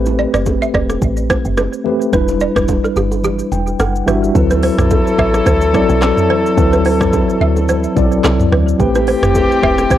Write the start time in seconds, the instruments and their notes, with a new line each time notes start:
Already playing: log drum bass A1, tine electric piano A3 C4 G4 B4
0.06 low bongo, shaker
0.19 balafon D5, low bongo
0.34 log drum bass F#1, balafon D5, cross-stick, shaker
0.46 kick, high bongo, shaker
0.62 balafon E5, shaker
0.74 log drum bass E1, balafon D5, kick, cross-stick, high bongo
0.90 cross-stick, high bongo, shaker
1.02 log drum bass A1, kick, low conga, shaker
1.17 shaker
1.30 balafon C5, kick, cross-stick, low bongo, shaker
1.45 log drum bass F#1, shaker
1.57 balafon B4, cross-stick, high bongo, low bongo, shaker
1.73 shaker
1.84 tine electric piano A3 C4 G4 B4, low conga
2.01 shaker
2.12 log drum bass E1, tine electric piano G3 D4 E4 B4, balafon B4, kick, low conga, shaker
2.28 low bongo, shaker
2.40 balafon D5, low bongo, shaker
2.56 log drum bass E1, balafon B4, kick, cross-stick, shaker
2.68 kick, high bongo, shaker
2.84 balafon A4, shaker
2.96 log drum bass G1, balafon G4, high bongo, shaker
3.12 high bongo, shaker
3.24 balafon G4, low conga, shaker
3.39 shaker
3.52 log drum bass E1, tine electric piano G5, low bongo, shaker
3.67 shaker
3.80 log drum bass F#1, balafon A4, tine electric piano F#5, cross-stick, high bongo, low bongo, shaker
3.96 shaker
4.06 log drum bass G1, tine electric piano G3 D4 E4 F#4 E5, balafon B4, cross-stick, low conga, shaker
4.24 shaker
4.34 log drum bass D2, tine electric piano F#3 C4 E4 B4, horn section F#3 E4 A4, kick, low conga, shaker
4.51 balafon B4, low bongo, shaker
4.63 balafon C5, open hi-hat, low bongo
4.78 log drum bass B1, cross-stick, mid tom, shaker
4.91 kick, high bongo, shaker
5.07 shaker
5.18 log drum bass A1, balafon E5, kick, cross-stick
5.34 cross-stick, high bongo, shaker
5.46 log drum bass D2, balafon C5, kick, low conga, shaker
5.61 shaker
5.73 tine electric piano F#3 C4 E4 D5, kick, cross-stick, low bongo, shaker
5.89 log drum bass B1, shaker
6.02 balafon A4, cross-stick, clap, high bongo, low bongo, shaker
6.17 mid tom, shaker
6.30 balafon C5, low conga
6.46 shaker
6.56 log drum bass D2, tine electric piano F#3 C4 E4 B4, kick, low conga, shaker
6.73 balafon B4, low bongo, shaker
6.85 balafon C5, open hi-hat, low bongo
7.01 log drum bass B1, kick, cross-stick, mid tom, shaker
7.13 kick, high bongo, shaker
7.30 shaker
7.41 log drum bass D2, balafon E5
7.56 high bongo, shaker
7.68 balafon C5, low conga, shaker
7.84 shaker
7.95 log drum bass B1, tine electric piano F#3 C4 E4 D5, kick, low bongo, shaker
8.12 shaker
8.24 log drum bass C2, balafon A4, cross-stick, clap, high bongo, low bongo, shaker
8.40 mid tom, shaker
8.52 log drum bass D2, balafon B4, cross-stick, low conga
8.68 shaker
8.78 log drum bass A1, horn section E3 C4 G4, tine electric piano A3 C4 G4 B4, kick, low conga, shaker
8.95 balafon B4, low bongo, shaker
9.07 balafon C5, open hi-hat, low bongo
9.23 log drum bass F#1, cross-stick, mid tom, shaker
9.35 kick, high bongo, shaker
9.52 shaker
9.63 log drum bass E1, balafon E5, kick, cross-stick
9.78 cross-stick, high bongo, shaker
9.90 log drum bass A1, balafon C5, kick, low conga, shaker